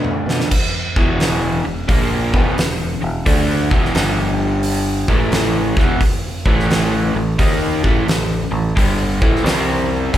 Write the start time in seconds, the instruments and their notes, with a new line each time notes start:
Already playing: fingered electric bass B2, overdriven electric guitar D3 A3 D4
0.04 mid tom
0.26 fingered electric bass B2, snare
0.40 snare
0.51 kick, crash
0.96 fingered electric bass E1, overdriven electric guitar E2 B2 E3, kick
1.20 snare, open hi-hat
1.65 fingered electric bass E1, overdriven electric guitar E2 B2
1.88 fingered electric bass A#1, overdriven electric guitar A#2 F3 A#3, kick, open hi-hat
2.32 fingered electric bass E1, overdriven electric guitar E2 B2 E3, kick
2.58 fingered electric bass E1, overdriven electric guitar E2 B2, snare, open hi-hat
3.02 fingered electric bass E1, overdriven electric guitar E2 B2
3.26 fingered electric bass D2, overdriven electric guitar D3 A3 D4, kick, open hi-hat
3.70 fingered electric bass E1, overdriven electric guitar E2 B2 E3, kick
3.85 snare
3.93 fingered electric bass G1, overdriven electric guitar G2 D3 G3, snare, open hi-hat
4.63 open hi-hat
5.08 fingered electric bass A1, overdriven electric guitar A2 E3 A3, kick
5.32 snare, open hi-hat
5.77 fingered electric bass E1, overdriven electric guitar E2 B2 E3, kick, snare
6.01 kick, open hi-hat
6.45 fingered electric bass A1, overdriven electric guitar A2 E3 A3, kick
6.60 snare
6.71 snare, open hi-hat
7.15 fingered electric bass A1, overdriven electric guitar A2 E3
7.38 fingered electric bass D#2, overdriven electric guitar D#3 A#3 D#4, kick, open hi-hat
7.83 fingered electric bass A1, overdriven electric guitar A2 E3 A3, kick
8.06 fingered electric bass A1, overdriven electric guitar A2 E3, snare, open hi-hat
8.51 fingered electric bass A1, overdriven electric guitar A2 E3
8.75 fingered electric bass G1, overdriven electric guitar G2 D3 G3, kick, open hi-hat
9.22 fingered electric bass A1, overdriven electric guitar A2 E3 A3, kick
9.36 snare
9.44 fingered electric bass C2, overdriven electric guitar C3 G3 C4, snare, open hi-hat
10.14 fingered electric bass G1, overdriven electric guitar G2, kick, open hi-hat